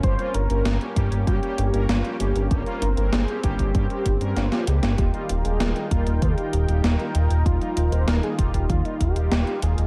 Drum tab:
HH |xxxxxxxxxxxxxxxx|xxxxxxxxxxxxxxxx|xxxxxxxxxxxxxxxx|xxxxxxxxxxxxxxxx|
SD |----o-------o---|----o-------oo-o|----o-------o---|----o-------o---|
BD |o-----o-o-------|o-----ooo-o-----|o-----o-o-------|o-----ooo-o-----|